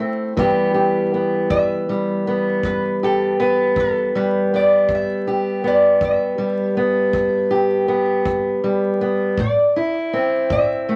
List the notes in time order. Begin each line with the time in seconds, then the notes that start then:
Already playing: A3 E4
0.00 C4
0.37 E2 E3 G3 B3 G4, kick
0.74 G4
1.14 B3
1.50 E2 E5, kick
1.89 G3
2.27 B3
2.63 E2 B4, kick
3.03 G4 A4
3.40 B3 B4
3.76 E2 A4, kick
4.15 G3 B4
4.54 B3 D5
4.89 E2, kick
4.95 E5
5.27 G4
5.64 B3 D5
6.01 E2 E5, kick
6.38 G3
6.77 B3
7.13 E2, kick
7.51 G4
7.88 B3
8.25 E2, kick
8.64 G3
9.01 B3
9.38 A2 D5, kick
9.76 E4
10.13 C4
10.19 C5
10.50 A2 E5, kick
10.89 A3